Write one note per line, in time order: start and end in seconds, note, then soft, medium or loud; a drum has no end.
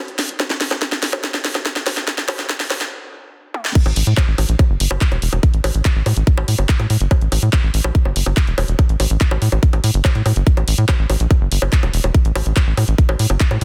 0.08 closed hi-hat soft
0.19 snare medium
0.19 open hi-hat loud
0.29 closed hi-hat medium
0.40 kick loud
0.40 snare medium
0.40 closed hi-hat medium
0.40 high bongo soft
0.50 snare medium
0.50 closed hi-hat soft
0.61 snare medium
0.61 open hi-hat loud
0.71 snare medium
0.71 closed hi-hat medium
0.71 high bongo soft
0.82 kick loud
0.82 snare medium
0.82 closed hi-hat medium
0.92 snare medium
1.03 snare loud
1.03 open hi-hat loud
1.13 snare medium
1.13 closed hi-hat medium
1.13 high bongo medium
1.24 kick loud
1.24 snare loud
1.24 closed hi-hat medium
1.34 snare medium
1.45 snare loud
1.45 open hi-hat loud
1.55 snare medium
1.55 closed hi-hat medium
1.55 high bongo soft
1.66 kick loud
1.66 snare loud
1.66 closed hi-hat medium
1.76 snare medium
1.76 closed hi-hat soft
1.87 snare loud
1.87 open hi-hat loud
1.87 high bongo soft
1.97 snare medium
1.97 closed hi-hat medium
2.07 kick loud
2.07 snare loud
2.07 closed hi-hat medium
2.18 snare medium
2.18 closed hi-hat soft
2.28 snare loud
2.28 open hi-hat loud
2.28 high bongo medium
2.39 snare medium
2.39 closed hi-hat medium
2.49 kick loud
2.49 snare loud
2.49 closed hi-hat medium
2.60 snare medium
2.60 open hi-hat medium
2.70 snare loud
2.70 open hi-hat loud
2.70 high bongo soft
2.81 snare loud
2.81 closed hi-hat medium
3.54 high tom medium
3.65 snare medium
3.75 kick loud
3.75 closed hi-hat medium
3.75 crash loud
3.86 3.93 A1 medium
3.86 closed hi-hat soft
3.86 high bongo soft
3.96 4.03 A1 loud
3.96 open hi-hat loud
4.07 4.14 A2 loud
4.07 closed hi-hat medium
4.17 kick loud
4.17 clap loud
4.17 closed hi-hat medium
4.17 high bongo medium
4.28 4.35 A1 medium
4.38 4.45 A1 loud
4.38 open hi-hat loud
4.38 high bongo soft
4.49 4.56 A#1 medium
4.49 closed hi-hat medium
4.59 kick loud
4.59 closed hi-hat medium
4.59 high bongo soft
4.70 4.77 G1 medium
4.80 4.87 G1 loud
4.80 open hi-hat loud
4.91 4.98 G1 medium
4.91 high bongo medium
5.01 kick loud
5.01 clap loud
5.01 closed hi-hat medium
5.12 5.19 E1 medium
5.12 closed hi-hat soft
5.12 high bongo soft
5.22 5.29 E1 loud
5.22 open hi-hat loud
5.33 5.40 E1 loud
5.33 closed hi-hat medium
5.33 high bongo soft
5.43 kick loud
5.43 closed hi-hat medium
5.54 5.61 A1 medium
5.54 closed hi-hat soft
5.64 5.71 A1 loud
5.64 open hi-hat loud
5.64 high bongo medium
5.75 5.82 A1 medium
5.75 closed hi-hat medium
5.85 kick loud
5.85 clap loud
5.85 closed hi-hat medium
5.85 high bongo soft
5.96 6.03 A1 medium
6.06 6.13 A2 loud
6.06 open hi-hat loud
6.06 high bongo soft
6.17 6.24 A1 loud
6.17 closed hi-hat medium
6.27 kick loud
6.27 closed hi-hat medium
6.38 6.45 A1 medium
6.38 high bongo medium
6.48 6.55 A2 loud
6.48 open hi-hat loud
6.59 6.66 G1 medium
6.59 closed hi-hat medium
6.59 high bongo soft
6.69 kick loud
6.69 clap loud
6.69 closed hi-hat medium
6.80 6.87 A2 medium
6.80 closed hi-hat soft
6.80 high bongo soft
6.90 6.97 A2 loud
6.90 open hi-hat loud
7.00 7.08 G1 medium
7.00 closed hi-hat medium
7.11 kick loud
7.11 closed hi-hat medium
7.11 high bongo medium
7.21 7.28 A1 medium
7.21 closed hi-hat soft
7.32 7.39 A1 loud
7.32 open hi-hat loud
7.32 high bongo soft
7.42 7.49 A2 loud
7.42 closed hi-hat medium
7.53 kick loud
7.53 clap loud
7.53 closed hi-hat medium
7.53 high bongo soft
7.63 7.70 A1 medium
7.74 7.81 A1 loud
7.74 open hi-hat loud
7.84 7.91 A#1 medium
7.84 high bongo medium
7.95 kick loud
7.95 closed hi-hat medium
8.05 8.12 G1 medium
8.05 high bongo soft
8.16 8.23 G1 loud
8.16 open hi-hat loud
8.26 8.33 G1 medium
8.26 closed hi-hat medium
8.26 high bongo soft
8.37 kick loud
8.37 clap loud
8.37 closed hi-hat medium
8.47 8.54 E1 medium
8.47 closed hi-hat soft
8.58 8.65 E1 loud
8.58 open hi-hat loud
8.58 high bongo medium
8.68 8.75 E1 loud
8.68 closed hi-hat medium
8.79 kick loud
8.79 closed hi-hat medium
8.79 high bongo soft
8.89 8.96 A1 medium
8.89 closed hi-hat soft
9.00 9.07 A1 loud
9.00 open hi-hat loud
9.00 high bongo soft
9.10 9.17 A1 medium
9.10 closed hi-hat medium
9.21 kick loud
9.21 clap loud
9.21 closed hi-hat medium
9.31 9.38 A1 medium
9.31 high bongo medium
9.42 9.49 A2 loud
9.42 open hi-hat loud
9.52 9.59 A1 loud
9.52 closed hi-hat soft
9.52 high bongo soft
9.63 kick loud
9.63 closed hi-hat medium
9.73 9.80 A1 medium
9.73 closed hi-hat soft
9.73 high bongo soft
9.84 9.91 A2 loud
9.84 open hi-hat loud
9.94 10.01 G1 medium
9.94 closed hi-hat medium
10.05 kick loud
10.05 clap loud
10.05 closed hi-hat medium
10.05 high bongo medium
10.15 10.22 A2 medium
10.15 closed hi-hat soft
10.26 10.33 A2 loud
10.26 open hi-hat loud
10.26 high bongo soft
10.36 10.43 G1 loud
10.36 closed hi-hat soft
10.47 kick loud
10.47 closed hi-hat medium
10.57 10.64 A1 medium
10.57 closed hi-hat soft
10.57 high bongo soft
10.68 10.75 A1 loud
10.68 open hi-hat loud
10.78 10.85 A2 medium
10.78 closed hi-hat medium
10.89 kick loud
10.89 clap loud
10.89 closed hi-hat medium
10.89 high bongo medium
10.99 11.06 A1 medium
11.10 11.17 A1 loud
11.10 open hi-hat loud
11.10 high bongo soft
11.20 11.27 A#1 loud
11.20 closed hi-hat medium
11.31 kick loud
11.31 closed hi-hat medium
11.31 high bongo soft
11.41 11.48 G1 medium
11.52 11.59 G1 loud
11.52 open hi-hat loud
11.62 11.69 G1 medium
11.62 high bongo medium
11.73 kick loud
11.73 clap loud
11.73 closed hi-hat medium
11.83 11.90 E1 medium
11.83 closed hi-hat soft
11.83 high bongo soft
11.93 12.00 E1 loud
11.93 open hi-hat loud
12.04 12.11 E1 medium
12.04 closed hi-hat medium
12.04 high bongo soft
12.14 kick loud
12.14 closed hi-hat medium
12.25 12.32 A1 medium
12.25 closed hi-hat soft
12.35 12.42 A1 loud
12.35 open hi-hat loud
12.35 high bongo medium
12.46 12.53 A1 loud
12.46 closed hi-hat medium
12.56 kick loud
12.56 clap loud
12.56 closed hi-hat medium
12.56 high bongo soft
12.67 12.74 A1 medium
12.77 12.84 A2 loud
12.77 open hi-hat loud
12.77 high bongo soft
12.88 12.95 A1 medium
12.88 closed hi-hat medium
12.98 kick loud
12.98 closed hi-hat medium
13.09 13.16 A1 medium
13.09 high bongo medium
13.19 13.26 A2 loud
13.19 open hi-hat loud
13.30 13.37 G1 medium
13.30 closed hi-hat medium
13.30 high bongo soft
13.40 kick loud
13.40 clap loud
13.40 closed hi-hat medium
13.51 13.58 A2 medium
13.51 closed hi-hat soft
13.51 high bongo soft